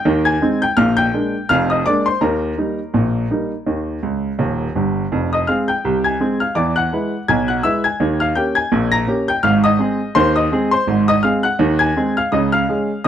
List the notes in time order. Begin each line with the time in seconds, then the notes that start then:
Already playing: G5 G6
0.05 D#2 D#3
0.25 G#5 G#6
0.42 G#3 C4 D#4
0.62 G5 G6
0.77 A#1 A#2 F5 F6
0.97 G5 G6
1.13 G#3 A#3 D4
1.49 F1 F2 F5 F6
1.70 D#5 D#6
1.86 G#3 A#3 D4 D5 D6
2.06 C5 C6
2.21 D#2 D#3 A#4 A#5
2.58 G3 A#3 D#4
2.94 A#1 A#2
3.31 G3 A#3 D#4
3.66 D#2 D#3
4.03 C#2
4.39 D#1 D#2
4.75 G1 G2
5.12 F1 F2
5.33 D#5 D#6
5.47 G#3 C4 G#4 F5 F6
5.68 G5 G6
5.85 C2 C3
6.04 G#5 G#6
6.20 G#3 C4 G#4
6.40 F5 F6
6.55 E2 E3 D5 D6
6.76 F#5 F#6
6.93 G#3 E4 B4
7.28 B1 B2 G#5 G#6
7.48 F#5 F#6
7.63 G#3 E4 B4 E5 E6
7.84 G#5 G#6
8.00 D#2 D#3
8.20 F5 F6
8.35 A#3 C#4 G4 G5 G6
8.55 G#5 G#6
8.72 A#1 A#2
8.92 A#5 A#6
9.07 A#3 C#4 G4
9.28 G5 G6
9.43 G#1 G#2 F5 F6
9.64 D#5 D#6
9.79 G#3 C4 G#4
10.15 D#2 D#3 C5 C6
10.36 D#5 D#6
10.52 G#3 C4 G#4
10.71 C5 C6
10.87 G#1 G#2
11.08 D#5 D#6
11.23 G#3 C4 G#4 F5 F6
11.43 F#5 F#6
11.59 D#2 D#3
11.79 G#5 G#6
11.97 G#3 C4 G#4
12.17 F5 F6
12.32 C#2 C#3 D#5 D#6
12.52 F5 F6
12.69 G#3 C#4 G#4
13.04 D#2 D#6